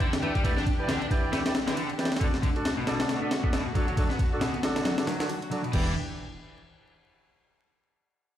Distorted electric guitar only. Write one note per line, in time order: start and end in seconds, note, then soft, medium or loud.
0.00 0.12 D3 loud
0.22 0.34 A3 loud
0.35 0.42 G3 medium
0.45 0.50 A3 loud
0.57 0.64 D4 medium
0.88 1.00 D3 loud
1.01 1.05 D4 loud
1.32 1.38 A3 loud
1.67 1.75 D3 medium
1.77 1.89 D3 loud
2.20 2.26 D3 medium
2.43 2.48 D3 loud
2.78 3.20 B2 medium
3.22 3.28 B3 medium
3.43 3.48 B3 loud
3.53 3.65 B2 loud
3.75 3.86 F#3 loud
3.87 3.94 F#3 medium
3.97 4.02 F#3 loud
4.10 4.17 B3 medium
4.41 4.53 B2 loud
4.53 4.58 B3 loud
4.85 4.91 F#3 loud
5.07 5.19 F#3 loud
5.20 5.28 F#3 loud
5.51 5.61 F#3 loud
5.64 5.71 B2 medium
5.73 5.94 E3 medium